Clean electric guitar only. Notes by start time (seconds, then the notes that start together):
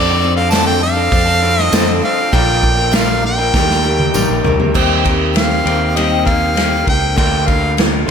Already playing: F3 C4 D4 A4
0.37 C4 D4 A4
0.51 F3 C4 D4 A4
0.66 C4 D4 A4
0.81 muted clean electric guitar stroke
0.95 C4 D4 A4
1.26 C4 D4 A4
1.41 F3 C4 D4 A4
1.71 F3 C4 D4 A4
1.87 C4 D4 A4
2.03 F3 C4 D4 A4
2.18 C4 D4 A4
2.32 A#2 D3 F3 A#3 D4 A#4
2.78 F3 A#3 D4 A#4
2.92 A#2 D3 F3 A#3 D4 A#4
3.07 F3 A#3 D4 A#4
3.22 muted clean electric guitar stroke
3.38 F3 A#3 D4 A#4
3.53 D#3 G3 A#3 D4 A#4
3.68 A#3 D4 A#4
3.82 G3 A#3 D4 A#4
4.13 D#3 G3 A#3 D4 A#4
4.28 A#3 D4 A#4
4.43 G3 A#3 D4 A#4
4.59 A#3 D4 A#4
4.73 D#3 A#3 C4 G4
5.64 D#3 A#3 C4 G4
7.15 D3 A#3 D4 F4
8.06 D4 F4